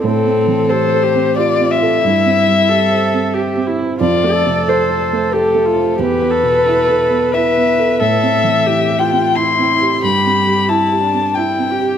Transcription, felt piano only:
\new Staff \with { instrumentName = "Felt piano" } { \time 3/4 \key a \minor \tempo 4 = 90 \tuplet 3/2 { a,8 c'8 e8 g'8 a'8 c'8 g'8 c'8 a'8 } | \tuplet 3/2 { g,8 c'8 g8 g'8 c''8 c'8 g'8 c'4 } | \tuplet 3/2 { f,8 a8 c8 a'4 a8 a'8 a8 c''8 } | \tuplet 3/2 { e,8 b8 b,8 e'8 a'8 b8 e'8 b8 a'8 } |
\tuplet 3/2 { a,8 c'8 e8 e'8 g'8 c'8 e'8 c'8 g'8 } | \tuplet 3/2 { g,8 c'8 g8 e'8 g'8 c'8 e'8 c'8 g'8 } | }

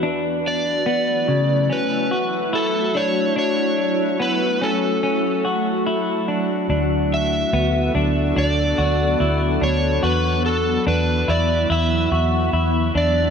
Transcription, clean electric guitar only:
\new Staff \with { instrumentName = "Clean electric guitar" } { \time 4/4 \key d \major \tempo 4 = 72 d'4 b8 cis8 cis'8 fis'8 e'8 d'8 | d'4 b8 cis'8 cis'8 fis'8 e'8 d'8 | d'4 b8 d'8 d'8 fis'8 e'8 d'8 | fis'4 d'8 e'8 e'8 fis'8 e'8 d'8 | }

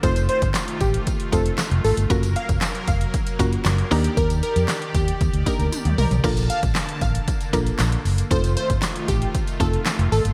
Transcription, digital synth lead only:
\new Staff \with { instrumentName = "Digital synth lead" } { \time 4/4 \key f \mixolydian \tempo 4 = 116 c''8 c''8 r8 g'8 r8 a'8 r8 a'16 r16 | r8 f''16 r8. f''16 r2 r16 | bes'8 bes'8 r8 g'8 r8 bes'8 r8 bes'16 r16 | r8 f''16 r8. f''16 r2 r16 |
c''8 c''8 r8 g'8 r8 a'8 r8 a'16 r16 | }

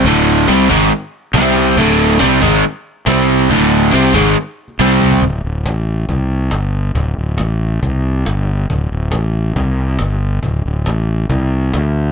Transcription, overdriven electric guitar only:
\new Staff \with { instrumentName = "Overdriven electric guitar" } { \clef bass \time 4/4 \key c \lydian \tempo 4 = 138 <d, a, d>4 <c g c'>8 <gis, ees gis>8 r4 <c g c'>4 | <d, a, d>4 <c g c'>8 <gis, ees gis>8 r4 <c g c'>4 | <d, a, d>4 <c g c'>8 <gis, ees gis>8 r4 <c g c'>4 | r1 |
r1 | r1 | r1 | }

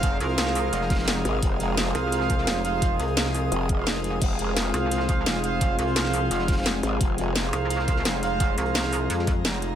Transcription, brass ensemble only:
\new Staff \with { instrumentName = "Brass ensemble" } { \time 4/4 \key f \minor \tempo 4 = 172 <f' c'' f''>8 <f' c'' f''>2~ <f' c'' f''>16 <f' c'' f''>16 r4 | r8 <f' c'' f''>2. <f' c'' f''>8~ | <f' c'' f''>8 r2 r16 <f' c'' f''>16 r4 | r8 <f' c'' f''>2. <f' c'' f''>8~ |
<f' c'' f''>8 <f' c'' f''>2~ <f' c'' f''>16 <f' c'' f''>16 r4 | r8 <f' c'' f''>2. <f' c'' f''>8~ | <f' c'' f''>8 <f' c'' f''>2~ <f' c'' f''>16 r4 r16 | }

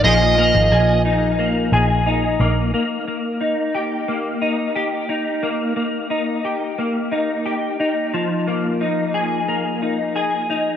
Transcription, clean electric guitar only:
\new Staff \with { instrumentName = "Clean electric guitar" } { \time 4/4 \key ees \major \tempo 4 = 89 <f bes ees' aes'>8 bes8 aes'8 ees'8 bes8 aes'8 ees'8 bes8 | bes8 bes8 ees'8 g'8 bes8 ees'8 g'8 ees'8 | bes8 bes8 ees'8 g'8 bes8 ees'8 g'8 ees'8 | f8 bes8 ees'8 aes'8 bes8 ees'8 aes'8 ees'8 | }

